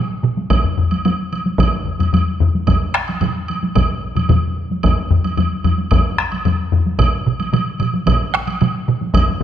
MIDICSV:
0, 0, Header, 1, 3, 480
1, 0, Start_track
1, 0, Tempo, 539568
1, 454, Time_signature, 4, 2, 24, 8
1, 8392, End_track
2, 0, Start_track
2, 0, Title_t, "Taiko and cinematic ensemble drums"
2, 207, Note_on_c, 9, 47, 82
2, 296, Note_off_c, 9, 47, 0
2, 332, Note_on_c, 9, 48, 50
2, 421, Note_off_c, 9, 48, 0
2, 444, Note_on_c, 9, 45, 62
2, 446, Note_on_c, 9, 41, 83
2, 454, Note_on_c, 9, 48, 72
2, 533, Note_off_c, 9, 45, 0
2, 535, Note_off_c, 9, 41, 0
2, 543, Note_off_c, 9, 48, 0
2, 568, Note_on_c, 9, 45, 65
2, 657, Note_off_c, 9, 45, 0
2, 690, Note_on_c, 9, 45, 81
2, 779, Note_off_c, 9, 45, 0
2, 816, Note_on_c, 9, 48, 52
2, 905, Note_off_c, 9, 48, 0
2, 938, Note_on_c, 9, 48, 75
2, 1027, Note_off_c, 9, 48, 0
2, 1179, Note_on_c, 9, 48, 45
2, 1268, Note_off_c, 9, 48, 0
2, 1296, Note_on_c, 9, 48, 48
2, 1385, Note_off_c, 9, 48, 0
2, 1407, Note_on_c, 9, 41, 90
2, 1414, Note_on_c, 9, 45, 93
2, 1421, Note_on_c, 9, 48, 59
2, 1496, Note_off_c, 9, 41, 0
2, 1503, Note_off_c, 9, 45, 0
2, 1510, Note_off_c, 9, 48, 0
2, 1650, Note_on_c, 9, 45, 58
2, 1739, Note_off_c, 9, 45, 0
2, 1774, Note_on_c, 9, 45, 68
2, 1779, Note_on_c, 9, 48, 49
2, 1862, Note_off_c, 9, 45, 0
2, 1868, Note_off_c, 9, 48, 0
2, 1893, Note_on_c, 9, 45, 87
2, 1903, Note_on_c, 9, 48, 62
2, 1981, Note_off_c, 9, 45, 0
2, 1992, Note_off_c, 9, 48, 0
2, 2137, Note_on_c, 9, 45, 94
2, 2226, Note_off_c, 9, 45, 0
2, 2268, Note_on_c, 9, 48, 45
2, 2357, Note_off_c, 9, 48, 0
2, 2374, Note_on_c, 9, 47, 80
2, 2376, Note_on_c, 9, 45, 87
2, 2381, Note_on_c, 9, 41, 73
2, 2386, Note_on_c, 9, 48, 58
2, 2463, Note_off_c, 9, 47, 0
2, 2465, Note_off_c, 9, 45, 0
2, 2470, Note_off_c, 9, 41, 0
2, 2475, Note_off_c, 9, 48, 0
2, 2617, Note_on_c, 9, 37, 69
2, 2620, Note_off_c, 9, 37, 0
2, 2620, Note_on_c, 9, 37, 75
2, 2709, Note_off_c, 9, 37, 0
2, 2749, Note_on_c, 9, 48, 45
2, 2838, Note_off_c, 9, 48, 0
2, 2858, Note_on_c, 9, 47, 80
2, 2861, Note_on_c, 9, 45, 80
2, 2863, Note_on_c, 9, 48, 60
2, 2947, Note_off_c, 9, 47, 0
2, 2950, Note_off_c, 9, 45, 0
2, 2952, Note_off_c, 9, 48, 0
2, 3112, Note_on_c, 9, 48, 44
2, 3201, Note_off_c, 9, 48, 0
2, 3227, Note_on_c, 9, 48, 50
2, 3316, Note_off_c, 9, 48, 0
2, 3339, Note_on_c, 9, 45, 94
2, 3342, Note_on_c, 9, 47, 82
2, 3344, Note_on_c, 9, 41, 79
2, 3349, Note_on_c, 9, 48, 56
2, 3428, Note_off_c, 9, 45, 0
2, 3431, Note_off_c, 9, 47, 0
2, 3433, Note_off_c, 9, 41, 0
2, 3438, Note_off_c, 9, 48, 0
2, 3696, Note_on_c, 9, 45, 59
2, 3701, Note_on_c, 9, 47, 57
2, 3710, Note_on_c, 9, 48, 51
2, 3785, Note_off_c, 9, 45, 0
2, 3790, Note_off_c, 9, 47, 0
2, 3799, Note_off_c, 9, 48, 0
2, 3815, Note_on_c, 9, 47, 91
2, 3820, Note_on_c, 9, 45, 91
2, 3826, Note_on_c, 9, 48, 62
2, 3904, Note_off_c, 9, 47, 0
2, 3909, Note_off_c, 9, 45, 0
2, 3915, Note_off_c, 9, 48, 0
2, 4192, Note_on_c, 9, 48, 44
2, 4280, Note_off_c, 9, 48, 0
2, 4301, Note_on_c, 9, 45, 92
2, 4304, Note_on_c, 9, 41, 82
2, 4306, Note_on_c, 9, 48, 58
2, 4390, Note_off_c, 9, 45, 0
2, 4393, Note_off_c, 9, 41, 0
2, 4395, Note_off_c, 9, 48, 0
2, 4542, Note_on_c, 9, 45, 93
2, 4631, Note_off_c, 9, 45, 0
2, 4669, Note_on_c, 9, 48, 49
2, 4758, Note_off_c, 9, 48, 0
2, 4780, Note_on_c, 9, 45, 75
2, 4789, Note_on_c, 9, 48, 56
2, 4869, Note_off_c, 9, 45, 0
2, 4878, Note_off_c, 9, 48, 0
2, 5020, Note_on_c, 9, 45, 91
2, 5025, Note_on_c, 9, 48, 46
2, 5109, Note_off_c, 9, 45, 0
2, 5114, Note_off_c, 9, 48, 0
2, 5145, Note_on_c, 9, 48, 45
2, 5234, Note_off_c, 9, 48, 0
2, 5262, Note_on_c, 9, 41, 89
2, 5263, Note_on_c, 9, 45, 93
2, 5270, Note_on_c, 9, 48, 54
2, 5351, Note_off_c, 9, 41, 0
2, 5352, Note_off_c, 9, 45, 0
2, 5359, Note_off_c, 9, 48, 0
2, 5502, Note_on_c, 9, 37, 70
2, 5591, Note_off_c, 9, 37, 0
2, 5625, Note_on_c, 9, 48, 42
2, 5714, Note_off_c, 9, 48, 0
2, 5739, Note_on_c, 9, 45, 92
2, 5744, Note_on_c, 9, 48, 55
2, 5828, Note_off_c, 9, 45, 0
2, 5833, Note_off_c, 9, 48, 0
2, 5979, Note_on_c, 9, 45, 93
2, 6068, Note_off_c, 9, 45, 0
2, 6108, Note_on_c, 9, 48, 44
2, 6197, Note_off_c, 9, 48, 0
2, 6215, Note_on_c, 9, 41, 84
2, 6222, Note_on_c, 9, 47, 85
2, 6228, Note_on_c, 9, 48, 52
2, 6304, Note_off_c, 9, 41, 0
2, 6311, Note_off_c, 9, 47, 0
2, 6317, Note_off_c, 9, 48, 0
2, 6463, Note_on_c, 9, 47, 86
2, 6552, Note_off_c, 9, 47, 0
2, 6588, Note_on_c, 9, 48, 44
2, 6677, Note_off_c, 9, 48, 0
2, 6697, Note_on_c, 9, 47, 90
2, 6701, Note_on_c, 9, 48, 62
2, 6786, Note_off_c, 9, 47, 0
2, 6790, Note_off_c, 9, 48, 0
2, 6936, Note_on_c, 9, 47, 88
2, 6944, Note_on_c, 9, 48, 42
2, 7025, Note_off_c, 9, 47, 0
2, 7033, Note_off_c, 9, 48, 0
2, 7061, Note_on_c, 9, 48, 50
2, 7150, Note_off_c, 9, 48, 0
2, 7178, Note_on_c, 9, 48, 53
2, 7180, Note_on_c, 9, 41, 89
2, 7180, Note_on_c, 9, 47, 97
2, 7267, Note_off_c, 9, 48, 0
2, 7269, Note_off_c, 9, 41, 0
2, 7269, Note_off_c, 9, 47, 0
2, 7428, Note_on_c, 9, 37, 72
2, 7517, Note_off_c, 9, 37, 0
2, 7539, Note_on_c, 9, 48, 48
2, 7628, Note_off_c, 9, 48, 0
2, 7662, Note_on_c, 9, 48, 59
2, 7666, Note_on_c, 9, 47, 95
2, 7751, Note_off_c, 9, 48, 0
2, 7755, Note_off_c, 9, 47, 0
2, 7900, Note_on_c, 9, 47, 92
2, 7989, Note_off_c, 9, 47, 0
2, 8018, Note_on_c, 9, 48, 46
2, 8107, Note_off_c, 9, 48, 0
2, 8128, Note_on_c, 9, 41, 84
2, 8130, Note_on_c, 9, 45, 68
2, 8138, Note_on_c, 9, 48, 57
2, 8217, Note_off_c, 9, 41, 0
2, 8218, Note_off_c, 9, 45, 0
2, 8227, Note_off_c, 9, 48, 0
2, 8252, Note_on_c, 9, 45, 74
2, 8341, Note_off_c, 9, 45, 0
2, 8392, End_track
3, 0, Start_track
3, 0, Title_t, "Drums"
3, 446, Note_on_c, 9, 76, 50
3, 535, Note_off_c, 9, 76, 0
3, 810, Note_on_c, 9, 76, 35
3, 899, Note_off_c, 9, 76, 0
3, 934, Note_on_c, 9, 76, 40
3, 1023, Note_off_c, 9, 76, 0
3, 1179, Note_on_c, 9, 76, 37
3, 1268, Note_off_c, 9, 76, 0
3, 1424, Note_on_c, 9, 76, 52
3, 1512, Note_off_c, 9, 76, 0
3, 1781, Note_on_c, 9, 76, 38
3, 1870, Note_off_c, 9, 76, 0
3, 1902, Note_on_c, 9, 76, 39
3, 1991, Note_off_c, 9, 76, 0
3, 2376, Note_on_c, 9, 76, 48
3, 2465, Note_off_c, 9, 76, 0
3, 2738, Note_on_c, 9, 76, 35
3, 2827, Note_off_c, 9, 76, 0
3, 2855, Note_on_c, 9, 76, 41
3, 2944, Note_off_c, 9, 76, 0
3, 3099, Note_on_c, 9, 76, 43
3, 3188, Note_off_c, 9, 76, 0
3, 3341, Note_on_c, 9, 76, 49
3, 3430, Note_off_c, 9, 76, 0
3, 3705, Note_on_c, 9, 76, 41
3, 3794, Note_off_c, 9, 76, 0
3, 3818, Note_on_c, 9, 76, 38
3, 3907, Note_off_c, 9, 76, 0
3, 4299, Note_on_c, 9, 76, 45
3, 4388, Note_off_c, 9, 76, 0
3, 4665, Note_on_c, 9, 76, 34
3, 4754, Note_off_c, 9, 76, 0
3, 4782, Note_on_c, 9, 76, 41
3, 4871, Note_off_c, 9, 76, 0
3, 5021, Note_on_c, 9, 76, 38
3, 5110, Note_off_c, 9, 76, 0
3, 5256, Note_on_c, 9, 76, 54
3, 5345, Note_off_c, 9, 76, 0
3, 5620, Note_on_c, 9, 76, 40
3, 5709, Note_off_c, 9, 76, 0
3, 5740, Note_on_c, 9, 76, 35
3, 5829, Note_off_c, 9, 76, 0
3, 6218, Note_on_c, 9, 76, 56
3, 6307, Note_off_c, 9, 76, 0
3, 6580, Note_on_c, 9, 76, 40
3, 6669, Note_off_c, 9, 76, 0
3, 6704, Note_on_c, 9, 76, 50
3, 6793, Note_off_c, 9, 76, 0
3, 6937, Note_on_c, 9, 76, 44
3, 7026, Note_off_c, 9, 76, 0
3, 7178, Note_on_c, 9, 76, 56
3, 7267, Note_off_c, 9, 76, 0
3, 7539, Note_on_c, 9, 76, 45
3, 7628, Note_off_c, 9, 76, 0
3, 7657, Note_on_c, 9, 76, 41
3, 7746, Note_off_c, 9, 76, 0
3, 8135, Note_on_c, 9, 76, 57
3, 8224, Note_off_c, 9, 76, 0
3, 8392, End_track
0, 0, End_of_file